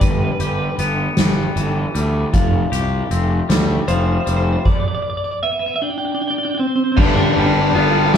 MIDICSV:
0, 0, Header, 1, 6, 480
1, 0, Start_track
1, 0, Tempo, 774194
1, 7, Time_signature, 6, 3, 24, 8
1, 5068, End_track
2, 0, Start_track
2, 0, Title_t, "Clean electric guitar"
2, 0, Program_c, 0, 27
2, 9, Note_on_c, 0, 71, 64
2, 55, Note_off_c, 0, 71, 0
2, 57, Note_on_c, 0, 71, 44
2, 101, Note_off_c, 0, 71, 0
2, 103, Note_on_c, 0, 71, 52
2, 147, Note_off_c, 0, 71, 0
2, 149, Note_on_c, 0, 71, 46
2, 194, Note_off_c, 0, 71, 0
2, 197, Note_on_c, 0, 71, 60
2, 243, Note_off_c, 0, 71, 0
2, 246, Note_on_c, 0, 71, 52
2, 287, Note_off_c, 0, 71, 0
2, 290, Note_on_c, 0, 71, 60
2, 337, Note_off_c, 0, 71, 0
2, 340, Note_on_c, 0, 71, 50
2, 380, Note_off_c, 0, 71, 0
2, 382, Note_on_c, 0, 71, 56
2, 427, Note_off_c, 0, 71, 0
2, 430, Note_on_c, 0, 71, 47
2, 474, Note_off_c, 0, 71, 0
2, 477, Note_on_c, 0, 71, 50
2, 524, Note_off_c, 0, 71, 0
2, 2406, Note_on_c, 0, 72, 91
2, 2452, Note_off_c, 0, 72, 0
2, 2454, Note_on_c, 0, 72, 61
2, 2500, Note_off_c, 0, 72, 0
2, 2502, Note_on_c, 0, 72, 77
2, 2546, Note_off_c, 0, 72, 0
2, 2549, Note_on_c, 0, 72, 70
2, 2598, Note_off_c, 0, 72, 0
2, 2606, Note_on_c, 0, 72, 74
2, 2656, Note_off_c, 0, 72, 0
2, 2659, Note_on_c, 0, 72, 64
2, 2704, Note_off_c, 0, 72, 0
2, 2706, Note_on_c, 0, 72, 81
2, 2747, Note_off_c, 0, 72, 0
2, 2749, Note_on_c, 0, 72, 64
2, 2799, Note_off_c, 0, 72, 0
2, 2806, Note_on_c, 0, 72, 77
2, 2848, Note_off_c, 0, 72, 0
2, 2851, Note_on_c, 0, 72, 60
2, 2886, Note_on_c, 0, 74, 71
2, 2900, Note_off_c, 0, 72, 0
2, 2926, Note_off_c, 0, 74, 0
2, 2928, Note_on_c, 0, 74, 53
2, 2973, Note_off_c, 0, 74, 0
2, 2975, Note_on_c, 0, 74, 64
2, 3021, Note_off_c, 0, 74, 0
2, 3024, Note_on_c, 0, 74, 60
2, 3064, Note_off_c, 0, 74, 0
2, 3066, Note_on_c, 0, 74, 71
2, 3112, Note_off_c, 0, 74, 0
2, 3115, Note_on_c, 0, 74, 64
2, 3158, Note_off_c, 0, 74, 0
2, 3160, Note_on_c, 0, 74, 70
2, 3205, Note_off_c, 0, 74, 0
2, 3207, Note_on_c, 0, 74, 61
2, 3248, Note_off_c, 0, 74, 0
2, 3251, Note_on_c, 0, 74, 68
2, 3292, Note_off_c, 0, 74, 0
2, 3295, Note_on_c, 0, 74, 53
2, 3340, Note_off_c, 0, 74, 0
2, 3365, Note_on_c, 0, 76, 87
2, 3367, Note_on_c, 0, 59, 69
2, 3415, Note_off_c, 0, 76, 0
2, 3416, Note_off_c, 0, 59, 0
2, 3418, Note_on_c, 0, 59, 54
2, 3421, Note_on_c, 0, 76, 69
2, 3466, Note_off_c, 0, 76, 0
2, 3468, Note_off_c, 0, 59, 0
2, 3469, Note_on_c, 0, 76, 84
2, 3472, Note_on_c, 0, 59, 61
2, 3509, Note_off_c, 0, 76, 0
2, 3512, Note_on_c, 0, 76, 75
2, 3519, Note_off_c, 0, 59, 0
2, 3521, Note_on_c, 0, 59, 55
2, 3559, Note_off_c, 0, 59, 0
2, 3561, Note_off_c, 0, 76, 0
2, 3561, Note_on_c, 0, 59, 55
2, 3569, Note_on_c, 0, 76, 79
2, 3607, Note_on_c, 0, 62, 88
2, 3608, Note_off_c, 0, 76, 0
2, 3610, Note_on_c, 0, 79, 74
2, 3611, Note_off_c, 0, 59, 0
2, 3655, Note_off_c, 0, 62, 0
2, 3655, Note_off_c, 0, 79, 0
2, 3658, Note_on_c, 0, 62, 60
2, 3658, Note_on_c, 0, 79, 58
2, 3703, Note_off_c, 0, 62, 0
2, 3704, Note_off_c, 0, 79, 0
2, 3706, Note_on_c, 0, 62, 72
2, 3708, Note_on_c, 0, 79, 63
2, 3748, Note_off_c, 0, 79, 0
2, 3749, Note_off_c, 0, 62, 0
2, 3750, Note_on_c, 0, 79, 58
2, 3751, Note_on_c, 0, 62, 66
2, 3793, Note_off_c, 0, 79, 0
2, 3796, Note_on_c, 0, 79, 67
2, 3801, Note_off_c, 0, 62, 0
2, 3811, Note_on_c, 0, 62, 81
2, 3842, Note_off_c, 0, 79, 0
2, 3846, Note_on_c, 0, 79, 61
2, 3852, Note_off_c, 0, 62, 0
2, 3855, Note_on_c, 0, 62, 72
2, 3889, Note_off_c, 0, 79, 0
2, 3891, Note_on_c, 0, 79, 70
2, 3904, Note_off_c, 0, 62, 0
2, 3908, Note_on_c, 0, 62, 78
2, 3931, Note_off_c, 0, 79, 0
2, 3934, Note_on_c, 0, 79, 63
2, 3955, Note_off_c, 0, 62, 0
2, 3957, Note_on_c, 0, 62, 67
2, 3981, Note_off_c, 0, 79, 0
2, 3988, Note_on_c, 0, 79, 63
2, 3996, Note_off_c, 0, 62, 0
2, 3999, Note_on_c, 0, 62, 74
2, 4026, Note_off_c, 0, 79, 0
2, 4029, Note_on_c, 0, 79, 58
2, 4048, Note_off_c, 0, 62, 0
2, 4058, Note_on_c, 0, 62, 58
2, 4075, Note_off_c, 0, 79, 0
2, 4077, Note_on_c, 0, 79, 62
2, 4086, Note_off_c, 0, 62, 0
2, 4089, Note_on_c, 0, 60, 84
2, 4124, Note_off_c, 0, 79, 0
2, 4134, Note_off_c, 0, 60, 0
2, 4137, Note_on_c, 0, 60, 65
2, 4186, Note_off_c, 0, 60, 0
2, 4189, Note_on_c, 0, 60, 80
2, 4238, Note_off_c, 0, 60, 0
2, 4240, Note_on_c, 0, 60, 61
2, 4287, Note_off_c, 0, 60, 0
2, 4290, Note_on_c, 0, 60, 65
2, 4328, Note_off_c, 0, 60, 0
2, 4331, Note_on_c, 0, 62, 102
2, 4379, Note_off_c, 0, 62, 0
2, 4381, Note_on_c, 0, 62, 74
2, 4427, Note_off_c, 0, 62, 0
2, 4429, Note_on_c, 0, 62, 85
2, 4476, Note_off_c, 0, 62, 0
2, 4478, Note_on_c, 0, 62, 85
2, 4526, Note_off_c, 0, 62, 0
2, 4528, Note_on_c, 0, 62, 88
2, 4574, Note_off_c, 0, 62, 0
2, 4577, Note_on_c, 0, 62, 82
2, 4623, Note_off_c, 0, 62, 0
2, 4626, Note_on_c, 0, 62, 95
2, 4668, Note_off_c, 0, 62, 0
2, 4670, Note_on_c, 0, 62, 80
2, 4719, Note_off_c, 0, 62, 0
2, 4724, Note_on_c, 0, 62, 83
2, 4773, Note_off_c, 0, 62, 0
2, 4780, Note_on_c, 0, 62, 68
2, 4806, Note_on_c, 0, 65, 106
2, 4829, Note_off_c, 0, 62, 0
2, 4852, Note_off_c, 0, 65, 0
2, 4854, Note_on_c, 0, 65, 81
2, 4901, Note_off_c, 0, 65, 0
2, 4903, Note_on_c, 0, 65, 97
2, 4953, Note_off_c, 0, 65, 0
2, 4956, Note_on_c, 0, 65, 81
2, 4993, Note_off_c, 0, 65, 0
2, 4996, Note_on_c, 0, 65, 83
2, 5043, Note_off_c, 0, 65, 0
2, 5046, Note_on_c, 0, 64, 96
2, 5068, Note_off_c, 0, 64, 0
2, 5068, End_track
3, 0, Start_track
3, 0, Title_t, "Distorted electric guitar"
3, 0, Program_c, 1, 30
3, 4323, Note_on_c, 1, 55, 89
3, 4329, Note_on_c, 1, 59, 95
3, 4336, Note_on_c, 1, 62, 101
3, 4340, Note_on_c, 1, 67, 95
3, 4562, Note_off_c, 1, 67, 0
3, 4564, Note_on_c, 1, 67, 75
3, 4573, Note_off_c, 1, 62, 0
3, 4575, Note_on_c, 1, 62, 70
3, 4578, Note_off_c, 1, 59, 0
3, 4581, Note_on_c, 1, 59, 69
3, 4799, Note_off_c, 1, 55, 0
3, 4802, Note_on_c, 1, 55, 79
3, 4804, Note_off_c, 1, 59, 0
3, 4807, Note_on_c, 1, 59, 82
3, 4810, Note_off_c, 1, 62, 0
3, 4812, Note_on_c, 1, 62, 79
3, 4815, Note_off_c, 1, 67, 0
3, 4817, Note_on_c, 1, 67, 79
3, 5038, Note_off_c, 1, 67, 0
3, 5041, Note_on_c, 1, 67, 87
3, 5043, Note_off_c, 1, 62, 0
3, 5049, Note_off_c, 1, 59, 0
3, 5068, Note_off_c, 1, 55, 0
3, 5068, Note_off_c, 1, 67, 0
3, 5068, End_track
4, 0, Start_track
4, 0, Title_t, "Clean electric guitar"
4, 0, Program_c, 2, 27
4, 0, Note_on_c, 2, 55, 57
4, 0, Note_on_c, 2, 67, 59
4, 9, Note_on_c, 2, 43, 64
4, 249, Note_off_c, 2, 67, 0
4, 251, Note_on_c, 2, 67, 59
4, 489, Note_on_c, 2, 59, 61
4, 727, Note_off_c, 2, 55, 0
4, 729, Note_on_c, 2, 55, 62
4, 967, Note_on_c, 2, 52, 64
4, 1202, Note_off_c, 2, 55, 0
4, 1205, Note_on_c, 2, 55, 59
4, 1209, Note_off_c, 2, 43, 0
4, 1443, Note_off_c, 2, 52, 0
4, 1446, Note_on_c, 2, 53, 61
4, 1449, Note_off_c, 2, 59, 0
4, 1464, Note_off_c, 2, 55, 0
4, 1464, Note_off_c, 2, 67, 0
4, 1686, Note_on_c, 2, 67, 66
4, 1928, Note_on_c, 2, 60, 60
4, 2164, Note_on_c, 2, 55, 72
4, 2399, Note_off_c, 2, 53, 0
4, 2406, Note_on_c, 2, 53, 61
4, 2635, Note_off_c, 2, 55, 0
4, 2643, Note_on_c, 2, 55, 59
4, 2885, Note_off_c, 2, 55, 0
4, 2887, Note_off_c, 2, 53, 0
4, 2887, Note_off_c, 2, 67, 0
4, 2888, Note_off_c, 2, 60, 0
4, 4319, Note_on_c, 2, 43, 76
4, 4564, Note_on_c, 2, 55, 67
4, 4804, Note_on_c, 2, 59, 68
4, 5039, Note_off_c, 2, 55, 0
4, 5041, Note_on_c, 2, 55, 81
4, 5068, Note_off_c, 2, 43, 0
4, 5068, Note_off_c, 2, 55, 0
4, 5068, Note_off_c, 2, 59, 0
4, 5068, End_track
5, 0, Start_track
5, 0, Title_t, "Fingered electric bass"
5, 0, Program_c, 3, 33
5, 7, Note_on_c, 3, 31, 85
5, 181, Note_off_c, 3, 31, 0
5, 245, Note_on_c, 3, 31, 66
5, 420, Note_off_c, 3, 31, 0
5, 485, Note_on_c, 3, 31, 76
5, 660, Note_off_c, 3, 31, 0
5, 726, Note_on_c, 3, 31, 83
5, 901, Note_off_c, 3, 31, 0
5, 966, Note_on_c, 3, 31, 76
5, 1141, Note_off_c, 3, 31, 0
5, 1209, Note_on_c, 3, 38, 81
5, 1383, Note_off_c, 3, 38, 0
5, 1449, Note_on_c, 3, 29, 78
5, 1623, Note_off_c, 3, 29, 0
5, 1686, Note_on_c, 3, 36, 74
5, 1861, Note_off_c, 3, 36, 0
5, 1926, Note_on_c, 3, 29, 82
5, 2101, Note_off_c, 3, 29, 0
5, 2167, Note_on_c, 3, 38, 88
5, 2341, Note_off_c, 3, 38, 0
5, 2406, Note_on_c, 3, 29, 73
5, 2581, Note_off_c, 3, 29, 0
5, 2646, Note_on_c, 3, 29, 73
5, 2821, Note_off_c, 3, 29, 0
5, 4327, Note_on_c, 3, 31, 87
5, 4554, Note_off_c, 3, 31, 0
5, 4567, Note_on_c, 3, 31, 93
5, 4793, Note_off_c, 3, 31, 0
5, 4804, Note_on_c, 3, 31, 90
5, 5031, Note_off_c, 3, 31, 0
5, 5044, Note_on_c, 3, 43, 101
5, 5068, Note_off_c, 3, 43, 0
5, 5068, End_track
6, 0, Start_track
6, 0, Title_t, "Drums"
6, 6, Note_on_c, 9, 42, 86
6, 7, Note_on_c, 9, 36, 97
6, 68, Note_off_c, 9, 42, 0
6, 69, Note_off_c, 9, 36, 0
6, 246, Note_on_c, 9, 42, 65
6, 308, Note_off_c, 9, 42, 0
6, 487, Note_on_c, 9, 42, 63
6, 549, Note_off_c, 9, 42, 0
6, 724, Note_on_c, 9, 38, 92
6, 724, Note_on_c, 9, 42, 72
6, 786, Note_off_c, 9, 38, 0
6, 786, Note_off_c, 9, 42, 0
6, 971, Note_on_c, 9, 42, 61
6, 1033, Note_off_c, 9, 42, 0
6, 1210, Note_on_c, 9, 42, 55
6, 1272, Note_off_c, 9, 42, 0
6, 1448, Note_on_c, 9, 36, 93
6, 1448, Note_on_c, 9, 42, 78
6, 1510, Note_off_c, 9, 36, 0
6, 1510, Note_off_c, 9, 42, 0
6, 1690, Note_on_c, 9, 42, 64
6, 1752, Note_off_c, 9, 42, 0
6, 1928, Note_on_c, 9, 42, 61
6, 1990, Note_off_c, 9, 42, 0
6, 2168, Note_on_c, 9, 38, 96
6, 2168, Note_on_c, 9, 42, 76
6, 2230, Note_off_c, 9, 38, 0
6, 2230, Note_off_c, 9, 42, 0
6, 2407, Note_on_c, 9, 42, 57
6, 2469, Note_off_c, 9, 42, 0
6, 2647, Note_on_c, 9, 42, 57
6, 2709, Note_off_c, 9, 42, 0
6, 2884, Note_on_c, 9, 49, 86
6, 2886, Note_on_c, 9, 36, 99
6, 2946, Note_off_c, 9, 49, 0
6, 2948, Note_off_c, 9, 36, 0
6, 4326, Note_on_c, 9, 36, 117
6, 4326, Note_on_c, 9, 49, 124
6, 4388, Note_off_c, 9, 36, 0
6, 4388, Note_off_c, 9, 49, 0
6, 4568, Note_on_c, 9, 51, 86
6, 4630, Note_off_c, 9, 51, 0
6, 4809, Note_on_c, 9, 51, 86
6, 4871, Note_off_c, 9, 51, 0
6, 5047, Note_on_c, 9, 38, 109
6, 5047, Note_on_c, 9, 51, 106
6, 5068, Note_off_c, 9, 38, 0
6, 5068, Note_off_c, 9, 51, 0
6, 5068, End_track
0, 0, End_of_file